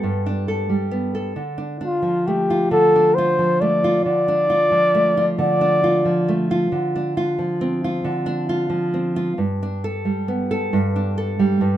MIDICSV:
0, 0, Header, 1, 3, 480
1, 0, Start_track
1, 0, Tempo, 890208
1, 741, Time_signature, 6, 3, 24, 8
1, 6347, End_track
2, 0, Start_track
2, 0, Title_t, "Flugelhorn"
2, 0, Program_c, 0, 56
2, 997, Note_on_c, 0, 65, 62
2, 1226, Note_on_c, 0, 67, 67
2, 1234, Note_off_c, 0, 65, 0
2, 1460, Note_off_c, 0, 67, 0
2, 1463, Note_on_c, 0, 69, 90
2, 1698, Note_on_c, 0, 72, 84
2, 1706, Note_off_c, 0, 69, 0
2, 1947, Note_on_c, 0, 74, 74
2, 1955, Note_off_c, 0, 72, 0
2, 2180, Note_off_c, 0, 74, 0
2, 2183, Note_on_c, 0, 74, 90
2, 2882, Note_off_c, 0, 74, 0
2, 2913, Note_on_c, 0, 74, 85
2, 3426, Note_off_c, 0, 74, 0
2, 6347, End_track
3, 0, Start_track
3, 0, Title_t, "Nylon-string guitar"
3, 0, Program_c, 1, 24
3, 0, Note_on_c, 1, 55, 47
3, 0, Note_on_c, 1, 59, 53
3, 0, Note_on_c, 1, 62, 47
3, 0, Note_on_c, 1, 69, 56
3, 18, Note_on_c, 1, 43, 51
3, 140, Note_off_c, 1, 62, 0
3, 142, Note_on_c, 1, 62, 45
3, 258, Note_off_c, 1, 69, 0
3, 260, Note_on_c, 1, 69, 51
3, 368, Note_off_c, 1, 55, 0
3, 374, Note_on_c, 1, 55, 46
3, 486, Note_off_c, 1, 59, 0
3, 492, Note_on_c, 1, 59, 51
3, 616, Note_off_c, 1, 69, 0
3, 618, Note_on_c, 1, 69, 50
3, 708, Note_off_c, 1, 59, 0
3, 710, Note_off_c, 1, 55, 0
3, 712, Note_off_c, 1, 43, 0
3, 733, Note_on_c, 1, 50, 50
3, 848, Note_off_c, 1, 62, 0
3, 850, Note_on_c, 1, 62, 44
3, 972, Note_off_c, 1, 62, 0
3, 975, Note_on_c, 1, 62, 43
3, 1090, Note_on_c, 1, 53, 51
3, 1227, Note_on_c, 1, 57, 47
3, 1348, Note_off_c, 1, 69, 0
3, 1350, Note_on_c, 1, 65, 51
3, 1460, Note_off_c, 1, 50, 0
3, 1462, Note_on_c, 1, 50, 62
3, 1592, Note_off_c, 1, 62, 0
3, 1594, Note_on_c, 1, 62, 48
3, 1713, Note_off_c, 1, 65, 0
3, 1716, Note_on_c, 1, 65, 57
3, 1824, Note_off_c, 1, 53, 0
3, 1827, Note_on_c, 1, 53, 54
3, 1943, Note_off_c, 1, 57, 0
3, 1949, Note_on_c, 1, 57, 50
3, 2069, Note_off_c, 1, 65, 0
3, 2072, Note_on_c, 1, 65, 54
3, 2158, Note_off_c, 1, 57, 0
3, 2184, Note_off_c, 1, 50, 0
3, 2186, Note_on_c, 1, 50, 49
3, 2307, Note_off_c, 1, 62, 0
3, 2309, Note_on_c, 1, 62, 51
3, 2423, Note_off_c, 1, 65, 0
3, 2425, Note_on_c, 1, 65, 60
3, 2540, Note_off_c, 1, 53, 0
3, 2542, Note_on_c, 1, 53, 50
3, 2667, Note_on_c, 1, 57, 51
3, 2788, Note_off_c, 1, 65, 0
3, 2790, Note_on_c, 1, 65, 65
3, 2901, Note_off_c, 1, 50, 0
3, 2903, Note_on_c, 1, 50, 61
3, 3023, Note_off_c, 1, 62, 0
3, 3025, Note_on_c, 1, 62, 52
3, 3141, Note_off_c, 1, 65, 0
3, 3147, Note_on_c, 1, 65, 54
3, 3257, Note_off_c, 1, 53, 0
3, 3263, Note_on_c, 1, 53, 48
3, 3382, Note_off_c, 1, 57, 0
3, 3389, Note_on_c, 1, 57, 53
3, 3503, Note_off_c, 1, 65, 0
3, 3510, Note_on_c, 1, 65, 58
3, 3593, Note_off_c, 1, 50, 0
3, 3594, Note_off_c, 1, 53, 0
3, 3596, Note_off_c, 1, 57, 0
3, 3623, Note_on_c, 1, 50, 57
3, 3749, Note_off_c, 1, 62, 0
3, 3751, Note_on_c, 1, 62, 52
3, 3860, Note_off_c, 1, 65, 0
3, 3866, Note_on_c, 1, 65, 58
3, 3982, Note_on_c, 1, 53, 48
3, 4103, Note_on_c, 1, 60, 57
3, 4223, Note_off_c, 1, 65, 0
3, 4229, Note_on_c, 1, 65, 54
3, 4331, Note_off_c, 1, 50, 0
3, 4337, Note_on_c, 1, 50, 64
3, 4452, Note_off_c, 1, 62, 0
3, 4454, Note_on_c, 1, 62, 55
3, 4573, Note_off_c, 1, 65, 0
3, 4579, Note_on_c, 1, 65, 57
3, 4682, Note_off_c, 1, 53, 0
3, 4689, Note_on_c, 1, 53, 59
3, 4812, Note_off_c, 1, 60, 0
3, 4819, Note_on_c, 1, 60, 46
3, 4934, Note_off_c, 1, 65, 0
3, 4940, Note_on_c, 1, 65, 59
3, 5025, Note_off_c, 1, 53, 0
3, 5029, Note_off_c, 1, 50, 0
3, 5030, Note_off_c, 1, 60, 0
3, 5057, Note_on_c, 1, 43, 50
3, 5060, Note_off_c, 1, 65, 0
3, 5188, Note_off_c, 1, 62, 0
3, 5190, Note_on_c, 1, 62, 51
3, 5306, Note_on_c, 1, 69, 55
3, 5419, Note_on_c, 1, 55, 45
3, 5544, Note_on_c, 1, 59, 49
3, 5660, Note_off_c, 1, 69, 0
3, 5666, Note_on_c, 1, 69, 63
3, 5778, Note_off_c, 1, 43, 0
3, 5786, Note_on_c, 1, 43, 65
3, 5902, Note_off_c, 1, 62, 0
3, 5908, Note_on_c, 1, 62, 49
3, 6020, Note_off_c, 1, 69, 0
3, 6026, Note_on_c, 1, 69, 59
3, 6137, Note_off_c, 1, 55, 0
3, 6143, Note_on_c, 1, 55, 55
3, 6253, Note_off_c, 1, 43, 0
3, 6260, Note_on_c, 1, 43, 52
3, 6347, Note_off_c, 1, 43, 0
3, 6347, Note_off_c, 1, 55, 0
3, 6347, Note_off_c, 1, 59, 0
3, 6347, Note_off_c, 1, 62, 0
3, 6347, Note_off_c, 1, 69, 0
3, 6347, End_track
0, 0, End_of_file